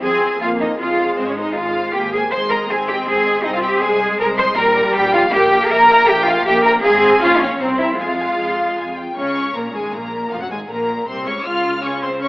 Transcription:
0.02 F2 C4 G#4 G#5
0.21 C5
0.40 F2 A#3 F4 G#4 F5
0.60 D#4 C5 D#5
0.79 F2 G#3 F4 G#4 F5
0.99 C5
1.17 G#1 C4 G#4 C5
1.27 C#4 C#5
1.37 D#4 C5 D#5
1.55 G#1 F4 G#4 F5
1.76 C5
1.93 G#1 A#3 G4 G#4 G5
2.13 G#4 C5 G#5
2.32 G#1 G#3 C5 C6
2.51 A#4 D#5 A#5
2.70 G#1 C4 G#4 C5 G#5
2.88 G4 D#5 G5
3.06 G#1 G#4 C5 G#5
3.26 D#5
3.44 C2 C4 D#4 C5 D#5
3.53 F4 F5
3.62 G4 D#5 G5
3.81 C2 G#3 G#4 C5 G#5
4.01 D#5
4.19 C2 A#4 C5 A#5
4.37 C5 D#5 C6
4.56 A#1 G3 A#4 G5 A#5
4.77 G5
4.94 A#1 G4 G5
5.13 F4 F5 G5
5.32 A#1 A#3 G4 G5
5.52 G5
5.70 A#1 A#4 E5 A#5
5.89 E5
6.08 A#1 G4 E5 G5
6.26 F4 E5 F5
6.46 A#1 A#3 G4 E5 G5
6.64 A#4 E5 A#5
6.84 G#1 C4 G#4 F5 G#5
7.03 F5
7.22 A#1 C#4 F4 F5 G5
7.42 C#4 C#5 G5
7.60 C2 C4 C5 A#5
7.80 E4 E5 A#5
7.99 F2 G#3 F4 F5 G#5
8.20 G#5
8.39 F2 C6
8.78 F2 G#5
8.98 G5
9.17 C#2 C#3 C#4 C#5 C#6
9.56 A#1 A#2 A#3 A#4 A#5
9.74 G#1 G#2 G#3 G#4 G#5
9.94 A#1 A#2 A#3 A#4 A#5
10.32 F1 F2 F3 F4 F5
10.41 F#2 F#3 F#4 F#5
10.51 G#1 G#2 G#3 G#4 G#5
10.70 A#1 A#2 A#3 A#4 A#5
11.08 C2 C3 C4 C5 C6
11.27 C#2 C#3 C#4 C#5 C#6
11.45 C#2 C#3 F4 F5 F6
11.84 C#4 C#5 C#6
12.03 C4 C5 C6
12.22 C#4 C#5 C#6

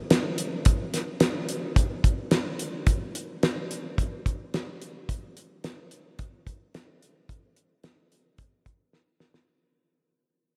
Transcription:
0.10 snare, closed hi-hat
0.38 closed hi-hat
0.65 kick, closed hi-hat
0.94 snare, closed hi-hat
1.20 snare, closed hi-hat
1.49 closed hi-hat
1.76 kick, closed hi-hat
2.04 kick, closed hi-hat
2.31 snare, closed hi-hat
2.59 closed hi-hat
2.87 kick, closed hi-hat
3.15 closed hi-hat
3.43 snare, closed hi-hat
3.71 closed hi-hat
3.98 kick, closed hi-hat
4.26 kick, closed hi-hat
4.54 snare, closed hi-hat
4.82 closed hi-hat
5.09 kick, closed hi-hat
5.37 closed hi-hat
5.64 snare, closed hi-hat
5.91 closed hi-hat
6.19 kick, closed hi-hat
6.47 kick, closed hi-hat
6.75 snare, closed hi-hat
7.03 closed hi-hat
7.29 kick, closed hi-hat
7.57 closed hi-hat
7.84 snare, closed hi-hat
8.12 closed hi-hat
8.38 kick, closed hi-hat
8.66 kick, closed hi-hat
8.93 snare
9.20 snare
9.34 snare

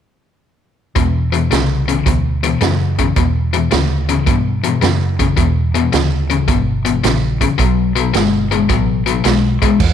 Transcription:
0.96 E2 B2, kick, closed hi-hat
1.32 E2 B2, closed hi-hat
1.51 C2 E2 C#3, snare, closed hi-hat
1.88 E2 C#3, closed hi-hat
2.06 D2 E2 B2, kick, closed hi-hat
2.43 E2 B2, closed hi-hat
2.61 E2 F#2 C#3, snare, closed hi-hat
2.98 E2 C#3, kick, closed hi-hat
3.16 E2 B2, kick, closed hi-hat
3.53 E2 B2, closed hi-hat
3.71 D2 E2 C#3, snare, closed hi-hat
4.09 E2 C#3, closed hi-hat
4.26 E2 G2 B2, kick, closed hi-hat
4.64 E2 B2, closed hi-hat
4.81 E2 F#2 C#3, snare, closed hi-hat
5.19 E2 C#3, kick, closed hi-hat
5.37 E2 B2, kick, closed hi-hat
5.74 E2 B2, closed hi-hat
5.92 D2 E2 C#3, snare, closed hi-hat
6.30 E2 C#3, closed hi-hat
6.48 G1 E2 B2, kick, closed hi-hat
6.85 E2 B2, closed hi-hat
7.04 A#1 E2 C#3, snare, closed hi-hat
7.41 E2 C#3, kick, closed hi-hat
7.58 B1 B2 F#3, kick, closed hi-hat
7.96 B2 F#3, closed hi-hat
8.14 G1 B2 G#3, snare, closed hi-hat
8.51 B2 G#3, closed hi-hat
8.69 A1 B2 F#3, kick, closed hi-hat
9.06 B2 F#3, closed hi-hat
9.24 B1 B2 G#3, snare, closed hi-hat
9.62 B2 G#3, muted fingered electric bass stroke, kick, closed hi-hat
9.80 E2, kick, crash

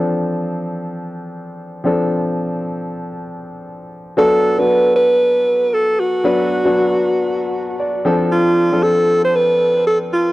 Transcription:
Already playing: F3 C4 D4 A4
1.84 F3 C4 D4 A4
4.17 F#3 B3 D4 A4
4.58 F#3 B3 D4 F#4 B4
4.96 B4
5.74 A4
6.00 F#4
6.24 F#3 B3 D4 B4
6.65 F#3 B3 D4 F#4
7.80 D5
8.05 F3 C4 D4 A4
8.32 F4
8.72 F3 C4 D4 A4
8.83 A4
9.25 C5
9.35 B4
9.87 A4
10.13 F4

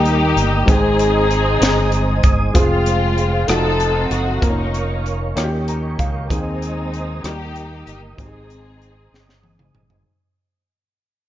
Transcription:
Already playing: D#2 D#3 G3 A#3 D#4 G4 A#4 D#5 G5 D#6
0.05 closed hi-hat
0.36 G1, closed hi-hat
0.66 G#1 G#2 G#3 C4 D#4 C5 G#5 D#6, kick, closed hi-hat
0.70 C4 D#4 G#4
0.99 closed hi-hat
1.31 closed hi-hat
1.61 G1, snare, closed hi-hat
1.92 closed hi-hat
2.23 G1, kick, closed hi-hat
2.54 F1 G#3 C4 F4 G#4 C5 F5 C6, kick, closed hi-hat
2.58 G#3 C4
2.86 closed hi-hat
3.18 closed hi-hat
3.47 F1 F3 A3 D#4 F#4 A4 F#5 D#6, cross-stick, closed hi-hat
3.51 C4 D#4 A4
3.80 closed hi-hat
4.11 F#1 F#4, closed hi-hat
4.41 F1 A#3 C4 F4 A#4 C#5 C#6, kick, closed hi-hat
4.45 A#3 C#4 D#4
4.74 closed hi-hat
5.06 closed hi-hat
5.36 D#2 D#3 A#3 C#4 D#4 F4 D#5 G5, cross-stick, closed hi-hat
5.44 G4
5.68 A#5, closed hi-hat
5.99 C#2 F5, kick, closed hi-hat
6.29 D#2 D#3 G#3 C4 D#4 G#4 C5 D#5 G#5 D#6, kick, closed hi-hat
6.33 G#3
6.62 closed hi-hat
6.94 closed hi-hat
7.23 D#2 D#3 G3 A#3 D#4 G4 A#4 G5 D#6, cross-stick, closed hi-hat
7.27 A#3
7.56 closed hi-hat
7.86 G1 G4, closed hi-hat
8.17 G#1 G#2 G#3 C4 D#4 G4 G#4 C5 G#5, kick, closed hi-hat
8.27 G#4
8.50 closed hi-hat
8.82 closed hi-hat
9.12 G1, snare
9.29 snare
9.43 high tom
9.59 mid tom
9.75 G1, mid tom
9.90 floor tom

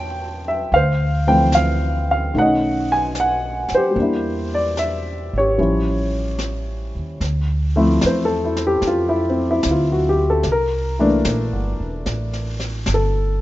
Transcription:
Already playing: E2 G3 A#3 C#4 E4 C#5 E5 G5 A5
0.48 E5
0.71 D2 F5, brush sweep
0.76 C5
1.27 E3 F3 A3 C4 G5
1.52 F5, snare, hi-hat pedal
2.11 F5
2.34 B1 D#3 A3 C#4, brush sweep
2.38 D#4 D#5 F#5
2.92 G#5
3.15 snare, hi-hat pedal
3.20 F#5
3.68 muted upright bass stroke, snare
3.75 G4 C5
3.91 G3 A#3
3.96 E2 D4, brush sweep
4.02 E4
4.54 D5
4.77 E5, snare, hi-hat pedal
5.33 G#1
5.38 G4 C#5
5.57 A1 F3 G3 C#4 E4, brush sweep
6.39 snare, hi-hat pedal
6.95 D#2
7.20 D2, brush sweep, snare
7.76 F3 A3 C4 E4
8.01 E2, snare, hi-hat pedal
8.06 C5
8.25 A4
8.45 E4
8.57 snare
8.67 G4
8.82 F2, brush sweep, snare
8.87 F4
9.09 E4
9.30 C4
9.51 E4
9.63 D2, snare, hi-hat pedal
9.71 F4
9.92 F#4
10.09 G4
10.30 A4
10.43 C2, brush sweep, snare
10.52 A#4
10.99 E3 A3 A#3 D4
11.25 A#1, snare, hi-hat pedal
11.52 G1
11.80 E1
12.06 A1, brush sweep, snare
12.33 snare
12.60 snare
12.86 G1, snare, hi-hat pedal
12.94 A4

